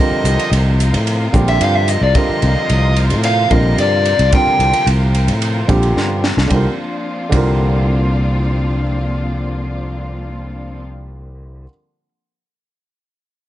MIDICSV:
0, 0, Header, 1, 7, 480
1, 0, Start_track
1, 0, Tempo, 543971
1, 1900, Time_signature, 4, 2, 24, 8
1, 11901, End_track
2, 0, Start_track
2, 0, Title_t, "Lead electric guitar"
2, 0, Program_c, 0, 29
2, 0, Note_on_c, 0, 75, 63
2, 433, Note_off_c, 0, 75, 0
2, 1312, Note_on_c, 0, 76, 66
2, 1422, Note_off_c, 0, 76, 0
2, 1444, Note_on_c, 0, 77, 87
2, 1555, Note_off_c, 0, 77, 0
2, 1555, Note_on_c, 0, 76, 62
2, 1663, Note_off_c, 0, 76, 0
2, 1673, Note_on_c, 0, 75, 67
2, 1785, Note_off_c, 0, 75, 0
2, 1796, Note_on_c, 0, 74, 61
2, 1909, Note_off_c, 0, 74, 0
2, 1909, Note_on_c, 0, 75, 67
2, 2624, Note_off_c, 0, 75, 0
2, 2869, Note_on_c, 0, 77, 62
2, 3097, Note_off_c, 0, 77, 0
2, 3102, Note_on_c, 0, 75, 70
2, 3334, Note_off_c, 0, 75, 0
2, 3350, Note_on_c, 0, 74, 67
2, 3792, Note_off_c, 0, 74, 0
2, 3836, Note_on_c, 0, 79, 60
2, 4275, Note_off_c, 0, 79, 0
2, 11901, End_track
3, 0, Start_track
3, 0, Title_t, "Grand piano"
3, 0, Program_c, 1, 0
3, 0, Note_on_c, 1, 50, 54
3, 0, Note_on_c, 1, 55, 51
3, 0, Note_on_c, 1, 60, 49
3, 0, Note_on_c, 1, 65, 54
3, 0, Note_on_c, 1, 70, 62
3, 630, Note_off_c, 1, 50, 0
3, 633, Note_off_c, 1, 55, 0
3, 633, Note_off_c, 1, 60, 0
3, 635, Note_off_c, 1, 65, 0
3, 636, Note_off_c, 1, 70, 0
3, 1173, Note_on_c, 1, 50, 59
3, 1178, Note_on_c, 1, 55, 52
3, 1181, Note_on_c, 1, 60, 51
3, 1183, Note_on_c, 1, 65, 53
3, 1188, Note_on_c, 1, 67, 62
3, 1662, Note_off_c, 1, 50, 0
3, 1664, Note_off_c, 1, 55, 0
3, 1666, Note_off_c, 1, 60, 0
3, 1667, Note_off_c, 1, 65, 0
3, 1669, Note_off_c, 1, 67, 0
3, 1893, Note_on_c, 1, 50, 55
3, 1898, Note_on_c, 1, 55, 51
3, 1898, Note_on_c, 1, 60, 49
3, 1905, Note_on_c, 1, 65, 46
3, 1909, Note_on_c, 1, 70, 59
3, 2545, Note_off_c, 1, 50, 0
3, 2547, Note_off_c, 1, 55, 0
3, 2547, Note_off_c, 1, 60, 0
3, 2550, Note_off_c, 1, 65, 0
3, 2553, Note_off_c, 1, 70, 0
3, 3092, Note_on_c, 1, 50, 53
3, 3095, Note_on_c, 1, 55, 53
3, 3098, Note_on_c, 1, 60, 49
3, 3105, Note_on_c, 1, 65, 50
3, 3107, Note_on_c, 1, 70, 62
3, 3582, Note_off_c, 1, 50, 0
3, 3583, Note_off_c, 1, 55, 0
3, 3584, Note_off_c, 1, 60, 0
3, 3588, Note_off_c, 1, 65, 0
3, 3589, Note_off_c, 1, 70, 0
3, 3816, Note_on_c, 1, 50, 54
3, 3818, Note_on_c, 1, 55, 50
3, 3823, Note_on_c, 1, 60, 52
3, 3827, Note_on_c, 1, 65, 52
3, 3829, Note_on_c, 1, 70, 54
3, 4467, Note_off_c, 1, 50, 0
3, 4468, Note_off_c, 1, 55, 0
3, 4471, Note_off_c, 1, 60, 0
3, 4472, Note_off_c, 1, 65, 0
3, 4473, Note_off_c, 1, 70, 0
3, 5012, Note_on_c, 1, 50, 62
3, 5017, Note_on_c, 1, 55, 56
3, 5022, Note_on_c, 1, 60, 54
3, 5025, Note_on_c, 1, 65, 53
3, 5027, Note_on_c, 1, 67, 74
3, 5502, Note_off_c, 1, 50, 0
3, 5505, Note_off_c, 1, 55, 0
3, 5507, Note_off_c, 1, 60, 0
3, 5509, Note_off_c, 1, 65, 0
3, 5510, Note_off_c, 1, 67, 0
3, 5713, Note_on_c, 1, 50, 59
3, 5728, Note_on_c, 1, 55, 53
3, 5742, Note_on_c, 1, 60, 58
3, 5759, Note_on_c, 1, 65, 51
3, 5773, Note_on_c, 1, 70, 67
3, 5862, Note_off_c, 1, 50, 0
3, 5870, Note_off_c, 1, 55, 0
3, 5877, Note_off_c, 1, 60, 0
3, 5887, Note_off_c, 1, 65, 0
3, 5894, Note_off_c, 1, 70, 0
3, 6435, Note_on_c, 1, 50, 66
3, 6448, Note_on_c, 1, 55, 59
3, 6465, Note_on_c, 1, 60, 55
3, 6479, Note_on_c, 1, 65, 58
3, 6495, Note_on_c, 1, 70, 69
3, 10256, Note_off_c, 1, 50, 0
3, 10269, Note_off_c, 1, 55, 0
3, 10286, Note_off_c, 1, 60, 0
3, 10300, Note_off_c, 1, 65, 0
3, 10316, Note_off_c, 1, 70, 0
3, 11901, End_track
4, 0, Start_track
4, 0, Title_t, "String section"
4, 0, Program_c, 2, 48
4, 0, Note_on_c, 2, 48, 57
4, 0, Note_on_c, 2, 53, 61
4, 0, Note_on_c, 2, 60, 52
4, 0, Note_on_c, 2, 65, 68
4, 0, Note_on_c, 2, 70, 60
4, 5701, Note_off_c, 2, 48, 0
4, 5701, Note_off_c, 2, 53, 0
4, 5703, Note_off_c, 2, 65, 0
4, 5704, Note_off_c, 2, 70, 0
4, 5705, Note_off_c, 2, 60, 0
4, 5733, Note_on_c, 2, 65, 65
4, 5735, Note_on_c, 2, 53, 51
4, 5737, Note_on_c, 2, 62, 55
4, 5738, Note_on_c, 2, 58, 46
4, 5738, Note_on_c, 2, 60, 51
4, 9555, Note_off_c, 2, 65, 0
4, 9556, Note_off_c, 2, 53, 0
4, 9558, Note_off_c, 2, 62, 0
4, 9559, Note_off_c, 2, 58, 0
4, 9560, Note_off_c, 2, 60, 0
4, 11901, End_track
5, 0, Start_track
5, 0, Title_t, "Fretless electric bass"
5, 0, Program_c, 3, 35
5, 213, Note_on_c, 3, 36, 68
5, 320, Note_off_c, 3, 36, 0
5, 456, Note_on_c, 3, 36, 73
5, 818, Note_on_c, 3, 45, 61
5, 831, Note_off_c, 3, 36, 0
5, 1121, Note_off_c, 3, 45, 0
5, 1184, Note_on_c, 3, 34, 77
5, 1384, Note_off_c, 3, 34, 0
5, 1417, Note_on_c, 3, 43, 74
5, 1723, Note_off_c, 3, 43, 0
5, 1778, Note_on_c, 3, 36, 73
5, 1879, Note_off_c, 3, 36, 0
5, 2142, Note_on_c, 3, 36, 75
5, 2244, Note_off_c, 3, 36, 0
5, 2382, Note_on_c, 3, 36, 76
5, 2743, Note_on_c, 3, 45, 67
5, 2756, Note_off_c, 3, 36, 0
5, 3044, Note_off_c, 3, 45, 0
5, 3097, Note_on_c, 3, 34, 78
5, 3300, Note_off_c, 3, 34, 0
5, 3338, Note_on_c, 3, 43, 69
5, 3644, Note_off_c, 3, 43, 0
5, 3700, Note_on_c, 3, 36, 72
5, 3800, Note_off_c, 3, 36, 0
5, 4054, Note_on_c, 3, 36, 61
5, 4159, Note_off_c, 3, 36, 0
5, 4295, Note_on_c, 3, 36, 74
5, 4659, Note_on_c, 3, 45, 60
5, 4672, Note_off_c, 3, 36, 0
5, 4962, Note_off_c, 3, 45, 0
5, 5016, Note_on_c, 3, 34, 74
5, 5220, Note_off_c, 3, 34, 0
5, 5261, Note_on_c, 3, 43, 66
5, 5566, Note_off_c, 3, 43, 0
5, 5624, Note_on_c, 3, 36, 70
5, 5723, Note_off_c, 3, 36, 0
5, 5739, Note_on_c, 3, 36, 65
5, 5876, Note_off_c, 3, 36, 0
5, 6463, Note_on_c, 3, 36, 67
5, 10284, Note_off_c, 3, 36, 0
5, 11901, End_track
6, 0, Start_track
6, 0, Title_t, "Muted fretless electric bass strokes"
6, 100, Note_on_c, 9, 29, 32
6, 188, Note_off_c, 9, 29, 0
6, 2025, Note_on_c, 9, 29, 30
6, 2113, Note_off_c, 9, 29, 0
6, 3944, Note_on_c, 9, 29, 29
6, 4032, Note_off_c, 9, 29, 0
6, 11901, End_track
7, 0, Start_track
7, 0, Title_t, "Drums"
7, 221, Note_on_c, 9, 44, 74
7, 221, Note_on_c, 9, 51, 55
7, 310, Note_off_c, 9, 44, 0
7, 310, Note_off_c, 9, 51, 0
7, 348, Note_on_c, 9, 51, 55
7, 436, Note_off_c, 9, 51, 0
7, 466, Note_on_c, 9, 51, 63
7, 554, Note_off_c, 9, 51, 0
7, 707, Note_on_c, 9, 44, 74
7, 707, Note_on_c, 9, 51, 51
7, 795, Note_off_c, 9, 44, 0
7, 795, Note_off_c, 9, 51, 0
7, 830, Note_on_c, 9, 51, 53
7, 918, Note_off_c, 9, 51, 0
7, 944, Note_on_c, 9, 51, 58
7, 1032, Note_off_c, 9, 51, 0
7, 1181, Note_on_c, 9, 36, 59
7, 1183, Note_on_c, 9, 44, 69
7, 1183, Note_on_c, 9, 51, 44
7, 1270, Note_off_c, 9, 36, 0
7, 1271, Note_off_c, 9, 44, 0
7, 1271, Note_off_c, 9, 51, 0
7, 1305, Note_on_c, 9, 51, 48
7, 1393, Note_off_c, 9, 51, 0
7, 1419, Note_on_c, 9, 51, 65
7, 1507, Note_off_c, 9, 51, 0
7, 1657, Note_on_c, 9, 44, 67
7, 1657, Note_on_c, 9, 51, 49
7, 1746, Note_off_c, 9, 44, 0
7, 1746, Note_off_c, 9, 51, 0
7, 1896, Note_on_c, 9, 51, 66
7, 1898, Note_on_c, 9, 36, 92
7, 1984, Note_off_c, 9, 51, 0
7, 1986, Note_off_c, 9, 36, 0
7, 2137, Note_on_c, 9, 51, 49
7, 2225, Note_off_c, 9, 51, 0
7, 2378, Note_on_c, 9, 51, 60
7, 2466, Note_off_c, 9, 51, 0
7, 2616, Note_on_c, 9, 51, 53
7, 2704, Note_off_c, 9, 51, 0
7, 2737, Note_on_c, 9, 51, 51
7, 2826, Note_off_c, 9, 51, 0
7, 2855, Note_on_c, 9, 51, 64
7, 2943, Note_off_c, 9, 51, 0
7, 3095, Note_on_c, 9, 51, 48
7, 3098, Note_on_c, 9, 36, 60
7, 3183, Note_off_c, 9, 51, 0
7, 3186, Note_off_c, 9, 36, 0
7, 3339, Note_on_c, 9, 51, 58
7, 3427, Note_off_c, 9, 51, 0
7, 3578, Note_on_c, 9, 51, 55
7, 3666, Note_off_c, 9, 51, 0
7, 3699, Note_on_c, 9, 51, 52
7, 3787, Note_off_c, 9, 51, 0
7, 3816, Note_on_c, 9, 51, 71
7, 3819, Note_on_c, 9, 36, 90
7, 3904, Note_off_c, 9, 51, 0
7, 3907, Note_off_c, 9, 36, 0
7, 4059, Note_on_c, 9, 51, 57
7, 4148, Note_off_c, 9, 51, 0
7, 4178, Note_on_c, 9, 51, 53
7, 4266, Note_off_c, 9, 51, 0
7, 4300, Note_on_c, 9, 51, 63
7, 4388, Note_off_c, 9, 51, 0
7, 4541, Note_on_c, 9, 51, 53
7, 4629, Note_off_c, 9, 51, 0
7, 4660, Note_on_c, 9, 51, 51
7, 4749, Note_off_c, 9, 51, 0
7, 4780, Note_on_c, 9, 51, 59
7, 4869, Note_off_c, 9, 51, 0
7, 5021, Note_on_c, 9, 36, 58
7, 5021, Note_on_c, 9, 51, 49
7, 5109, Note_off_c, 9, 36, 0
7, 5109, Note_off_c, 9, 51, 0
7, 5143, Note_on_c, 9, 51, 41
7, 5231, Note_off_c, 9, 51, 0
7, 5270, Note_on_c, 9, 38, 38
7, 5358, Note_off_c, 9, 38, 0
7, 5505, Note_on_c, 9, 38, 59
7, 5594, Note_off_c, 9, 38, 0
7, 5630, Note_on_c, 9, 38, 57
7, 5718, Note_off_c, 9, 38, 0
7, 5739, Note_on_c, 9, 51, 66
7, 5741, Note_on_c, 9, 36, 57
7, 5827, Note_off_c, 9, 51, 0
7, 5829, Note_off_c, 9, 36, 0
7, 6462, Note_on_c, 9, 36, 55
7, 6462, Note_on_c, 9, 51, 68
7, 6550, Note_off_c, 9, 36, 0
7, 6550, Note_off_c, 9, 51, 0
7, 11901, End_track
0, 0, End_of_file